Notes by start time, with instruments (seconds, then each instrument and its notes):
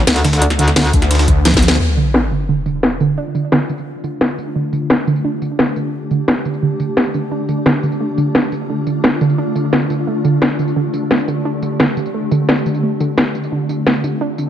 0.07 wobble bass D2, snare, closed hi-hat
0.16 snare, closed hi-hat
0.24 synth arpeggio sound D3, snare, closed hi-hat
0.33 snare, closed hi-hat
0.42 synth arpeggio sound D4, closed hi-hat
0.50 snare, closed hi-hat
0.59 synth arpeggio sound D3, closed hi-hat
0.68 snare, closed hi-hat
0.76 synth arpeggio sound D3, snare, closed hi-hat
0.85 snare
0.93 detuned saw bass D2, synth arpeggio sound D3, kick, closed hi-hat
1.02 snare, closed hi-hat
1.11 snare, closed hi-hat
1.15 snare, closed hi-hat
1.19 snare, closed hi-hat
1.28 synth arpeggio sound D3, kick, closed hi-hat
1.45 synth arpeggio sound F3, snare, closed hi-hat
1.54 kick, snare, closed hi-hat
1.62 synth arpeggio sound F3, snare, closed hi-hat
1.68 snare
1.71 snare
1.80 synth drone D3 A3 D4 F4, sub drop
1.97 synth arpeggio sound D3, tambourine
2.14 synth arpeggio sound D4, snare
2.31 synth arpeggio sound D3, tambourine
2.40 tambourine
2.49 synth arpeggio sound D3
2.66 synth arpeggio sound D3, tambourine
2.83 snare
2.92 tambourine
3.00 synth arpeggio sound D3, tambourine
3.18 synth arpeggio sound D4
3.35 synth arpeggio sound D3, tambourine
3.52 synth arpeggio sound D3, snare
3.69 synth arpeggio sound D3, tambourine
3.78 tambourine
4.04 synth arpeggio sound D3, tambourine
4.21 synth arpeggio sound D4, snare
4.30 tambourine
4.38 synth arpeggio sound D3, tambourine
4.56 synth arpeggio sound D3, synth drone G4
4.73 synth arpeggio sound D3, tambourine
4.90 snare
5.07 synth arpeggio sound D3, tambourine
5.16 tambourine
5.25 synth arpeggio sound D4
5.42 synth arpeggio sound D3, tambourine
5.59 synth arpeggio sound D3, snare
5.68 tambourine
5.76 synth arpeggio sound D3, tambourine
6.11 synth arpeggio sound D3, tambourine
6.28 synth arpeggio sound D4, snare
6.45 synth arpeggio sound D3, tambourine
6.54 tambourine
6.62 synth arpeggio sound D3
6.80 synth arpeggio sound D3, tambourine
6.97 snare
7.06 tambourine
7.14 synth arpeggio sound D3, tambourine
7.31 synth arpeggio sound D4, synth drone F4
7.49 synth arpeggio sound D3, tambourine
7.66 synth arpeggio sound D3, snare
7.83 synth arpeggio sound D3, tambourine
7.92 tambourine
8.00 synth arpeggio sound A3
8.18 synth arpeggio sound D3, tambourine
8.35 synth arpeggio sound D4, snare
8.44 tambourine
8.52 synth arpeggio sound D3, tambourine
8.69 synth arpeggio sound D3
8.87 synth arpeggio sound D3, tambourine
9.04 synth arpeggio sound A3, snare
9.21 synth arpeggio sound D3, tambourine
9.30 tambourine
9.38 synth arpeggio sound D4
9.55 synth arpeggio sound D3, tambourine
9.73 synth arpeggio sound D3, snare
9.81 tambourine
9.90 synth arpeggio sound D3, tambourine
10.07 synth arpeggio sound A3, synth drone G4
10.25 synth arpeggio sound D3, tambourine
10.42 synth arpeggio sound D4, snare
10.59 synth arpeggio sound D3, tambourine
10.68 tambourine
10.76 synth arpeggio sound D3
10.93 synth arpeggio sound D3, tambourine
11.11 synth arpeggio sound A3, snare
11.19 tambourine
11.28 synth arpeggio sound D3, tambourine
11.45 synth arpeggio sound D4
11.62 synth arpeggio sound D3, tambourine
11.80 synth arpeggio sound D3, snare
11.97 synth arpeggio sound D3, tambourine
12.06 tambourine
12.14 synth arpeggio sound A3
12.31 synth arpeggio sound D3, tambourine
12.49 synth arpeggio sound D4, snare
12.57 tambourine
12.66 synth arpeggio sound D3, tambourine
12.75 tambourine
12.83 synth arpeggio sound A3, synth drone C4 F4
13.00 synth arpeggio sound D3, tambourine
13.18 synth arpeggio sound D4, snare
13.35 synth arpeggio sound D3, tambourine
13.44 tambourine
13.52 synth arpeggio sound D3
13.69 synth arpeggio sound D3, tambourine
13.87 synth arpeggio sound A3, snare
13.95 tambourine
14.04 synth arpeggio sound D3, tambourine
14.21 synth arpeggio sound D4
14.38 synth arpeggio sound D3, tambourine